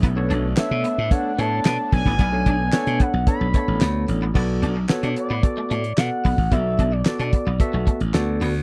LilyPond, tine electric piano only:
\new Staff \with { instrumentName = "Tine electric piano" } { \time 4/4 \key b \dorian \tempo 4 = 111 r16 <b d' a' cis''>8 r16 <b d' a' cis''>8. r16 <b d' a' cis''>16 r16 <b d' a' cis''>4~ <b d' a' cis''>16 r16 | r16 <b d' a' cis''>8 r16 <b d' a' cis''>8. r16 <b d' a' cis''>16 r16 <b d' a' cis''>4~ <b d' a' cis''>16 r16 | <b fis' a' d''>8. r16 <b fis' a' cis''>8. r16 <b fis' a' d''>8. r16 <b fis' a' d''>8. r16 | <b fis' a' d''>8. r16 <b fis' a' d''>8. r16 <b fis' a' e''>8. r16 <b fis' a' d''>8. r16 | }